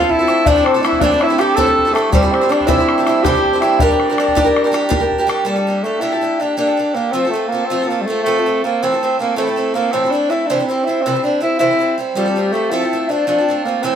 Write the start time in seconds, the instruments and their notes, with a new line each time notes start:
Already playing: hammered dulcimer A3 C4 D4 F4, tenor saxophone F4, flute F5
0.01 steel-string acoustic guitar C4 F4 A4
0.09 hammered dulcimer E4, tenor saxophone E4, flute E5, bodhran
0.19 steel-string acoustic guitar C4 F4 A4
0.27 steel-string acoustic guitar A3 C4 F4 A4, bodhran
0.44 steel-string acoustic guitar A2 E3 A3 C4 E4 A4, hammered dulcimer D4, tenor saxophone D4, flute D5, bodhran
0.56 steel-string acoustic guitar A3 C4 E4 A4
0.63 tenor saxophone C4, hammered dulcimer C4, flute C5, bodhran
0.74 steel-string acoustic guitar A3 C4 E4 A4
0.81 steel-string acoustic guitar A3 C4 E4, tenor saxophone E4, hammered dulcimer E4, flute E5, bodhran
0.86 steel-string acoustic guitar A4
0.92 bodhran
0.97 hammered dulcimer D4, tenor saxophone D4, flute E5
1.01 steel-string acoustic guitar A2 E3 A3 C4 E4 A4, flute D5, bodhran
1.11 steel-string acoustic guitar A3 C4 E4 A4
1.19 hammered dulcimer E4, tenor saxophone E4, flute E5, bodhran
1.28 steel-string acoustic guitar A3 C4 E4 A4
1.38 steel-string acoustic guitar A3 C4 E4 A4, hammered dulcimer G4, tenor saxophone G4, flute G5, bodhran
1.55 steel-string acoustic guitar A2 E3 A3 C4 E4 A4, tenor saxophone A4, hammered dulcimer A4, flute A5, bodhran
1.66 steel-string acoustic guitar A3 C4 E4 A4
1.78 bodhran
1.85 steel-string acoustic guitar A3 C4 E4 A4
1.93 hammered dulcimer A3, tenor saxophone A3, steel-string acoustic guitar A3 C4 E4, flute A4, bodhran
1.98 steel-string acoustic guitar A4
2.12 steel-string acoustic guitar C3 E3 G3 C4 E4 C5, tenor saxophone G3, hammered dulcimer G3, flute G4, bodhran
2.23 steel-string acoustic guitar G3 C4 E4 C5
2.31 hammered dulcimer C4, tenor saxophone C4, bodhran
2.41 steel-string acoustic guitar G3 C4 E4 C5
2.49 steel-string acoustic guitar G3 C4 E4 C5, hammered dulcimer D4, tenor saxophone D4, flute D5, bodhran
2.61 bodhran
2.66 steel-string acoustic guitar C3 E3 G3 C4 E4 C5, hammered dulcimer E4, tenor saxophone E4, flute E5, bodhran
2.79 steel-string acoustic guitar G3 C4 E4 C5
2.89 bodhran
2.98 steel-string acoustic guitar G3 C4 E4 C5
3.05 steel-string acoustic guitar G3 C4 E4, tenor saxophone E4, hammered dulcimer E4, flute E5, bodhran
3.09 steel-string acoustic guitar C5
3.23 steel-string acoustic guitar C3 E3 G3 C4 E4 C5, tenor saxophone G4, hammered dulcimer G4, flute G5, bodhran
3.35 steel-string acoustic guitar G3 C4 E4 C5
3.45 bodhran
3.53 steel-string acoustic guitar G3 C4 E4 C5
3.61 steel-string acoustic guitar G3 C4 E4 C5, tenor saxophone E4, hammered dulcimer E4, bodhran
3.79 steel-string acoustic guitar G3 D4 G4 A#4, hammered dulcimer D4, tenor saxophone D4, flute D5, bodhran
3.90 steel-string acoustic guitar D4 G4 A#4
4.00 bodhran
4.09 steel-string acoustic guitar D4 G4 A#4
4.18 steel-string acoustic guitar G3 D4 G4 A#4, bodhran
4.28 bodhran
4.35 steel-string acoustic guitar G3 D4 G4 A#4, bodhran
4.45 steel-string acoustic guitar D4 G4 A#4
4.56 bodhran
4.64 steel-string acoustic guitar D4 G4 A#4
4.72 steel-string acoustic guitar G3 D4 G4 A#4, bodhran
4.89 steel-string acoustic guitar G3 D4 G4 A#4, bodhran
5.00 steel-string acoustic guitar D4 G4 A#4
5.12 bodhran
5.18 steel-string acoustic guitar D4 G4 A#4
5.27 steel-string acoustic guitar G3 D4 G4 A#4, bodhran
5.45 steel-string acoustic guitar G3 A#3 D4 G4 A4, tenor saxophone G3
5.56 steel-string acoustic guitar D4 G4 A4
5.67 steel-string acoustic guitar A#3 D4 G4 A4
5.84 tenor saxophone A3, steel-string acoustic guitar A#3 D4 G4 A4
6.01 steel-string acoustic guitar G3 A#3 D4 G4 A4, tenor saxophone E4
6.12 steel-string acoustic guitar D4 G4 A4
6.21 steel-string acoustic guitar A#3 D4 G4 A4
6.40 steel-string acoustic guitar A#3 D4 G4 A4, tenor saxophone D4
6.57 steel-string acoustic guitar G3 A#3 D4 G4 A4, tenor saxophone D4
6.67 steel-string acoustic guitar D4 G4 A4
6.77 steel-string acoustic guitar A#3 D4 G4 A4
6.95 steel-string acoustic guitar A#3 D4 G4 A4, tenor saxophone A#3
7.12 steel-string acoustic guitar F3 A3 C4 F4 A4, tenor saxophone C4
7.25 steel-string acoustic guitar C4 F4 A4
7.30 tenor saxophone A3, steel-string acoustic guitar A3
7.35 steel-string acoustic guitar C4 F4 A4
7.48 tenor saxophone A#3
7.52 steel-string acoustic guitar A3 C4 F4 A4
7.66 tenor saxophone C4
7.70 steel-string acoustic guitar F3 A3 C4 F4 A4
7.82 steel-string acoustic guitar C4 F4 A4
7.88 steel-string acoustic guitar A3 C4 F4, tenor saxophone A#3
7.93 steel-string acoustic guitar A4
8.01 tenor saxophone G3
8.06 tenor saxophone A3, steel-string acoustic guitar A3 C4
8.10 steel-string acoustic guitar F4 A4
8.23 steel-string acoustic guitar F3 A3 C4 F4, tenor saxophone A3
8.28 steel-string acoustic guitar A4
8.36 steel-string acoustic guitar C4 F4 A4
8.46 steel-string acoustic guitar A3 C4 F4 A4
8.64 steel-string acoustic guitar A3 C4 F4 A4, tenor saxophone A#3
8.83 steel-string acoustic guitar A2 E3 A3 C4 E4 A4, tenor saxophone C4
8.92 steel-string acoustic guitar A3 C4 E4 A4
9.01 steel-string acoustic guitar A3 C4 E4 A4, tenor saxophone C4
9.19 steel-string acoustic guitar A3 C4 E4 A4, tenor saxophone A#3
9.36 steel-string acoustic guitar A2 E3 A3 C4 E4 A4, tenor saxophone A3
9.47 steel-string acoustic guitar A3 C4 E4 A4
9.56 steel-string acoustic guitar A3 C4 E4 A4
9.74 steel-string acoustic guitar A3 C4 E4 A4, tenor saxophone A#3
9.92 steel-string acoustic guitar A2 E3 A3 C4 E4 A4, tenor saxophone C4
10.04 steel-string acoustic guitar A3 C4 E4 A4
10.11 steel-string acoustic guitar A3 C4 E4, tenor saxophone D4
10.15 steel-string acoustic guitar A4
10.30 steel-string acoustic guitar A3 C4 E4 A4, tenor saxophone E4
10.46 steel-string acoustic guitar C3 E3 G3 C4, tenor saxophone D4
10.51 steel-string acoustic guitar E4 C5
10.59 steel-string acoustic guitar G3 C4 E4 C5
10.67 steel-string acoustic guitar G3 C4, tenor saxophone C4
10.71 steel-string acoustic guitar E4 C5
10.84 steel-string acoustic guitar G3 C4, tenor saxophone E4
10.89 steel-string acoustic guitar E4 C5
11.01 tenor saxophone C4
11.06 steel-string acoustic guitar C3 E3 G3 C4 E4 C5
11.14 steel-string acoustic guitar G3 C4 E4 C5
11.23 steel-string acoustic guitar G3 C4 E4 C5, tenor saxophone D4
11.41 steel-string acoustic guitar G3 C4 E4 C5, tenor saxophone E4
11.59 steel-string acoustic guitar C3 E3 G3 C4 E4 C5, tenor saxophone E4
11.71 steel-string acoustic guitar G3 C4 E4 C5
11.79 steel-string acoustic guitar G3 C4 E4 C5
11.98 steel-string acoustic guitar G3 C4 E4 C5
12.15 steel-string acoustic guitar F3 A3 C4 F4 A4, tenor saxophone G3, flute G4
12.26 steel-string acoustic guitar C4 F4 A4
12.36 steel-string acoustic guitar A3 C4 F4 A4
12.52 tenor saxophone A3, steel-string acoustic guitar A3 C4 F4 A4
12.71 steel-string acoustic guitar F3 A3 C4 F4 A4, tenor saxophone E4, flute E5
12.82 steel-string acoustic guitar C4 F4 A4
12.93 steel-string acoustic guitar A3 C4 F4 A4
13.09 steel-string acoustic guitar A3 C4 F4 A4, tenor saxophone D4, flute D5
13.27 steel-string acoustic guitar F3 A3 C4 F4 A4, tenor saxophone D4, flute D5
13.38 steel-string acoustic guitar C4 F4 A4
13.49 steel-string acoustic guitar A3 C4 F4 A4
13.64 steel-string acoustic guitar A3 C4, tenor saxophone A#3, flute A#4
13.68 steel-string acoustic guitar F4 A4
13.83 steel-string acoustic guitar A2 E3 A3 C4 E4 A4, tenor saxophone C4, flute C5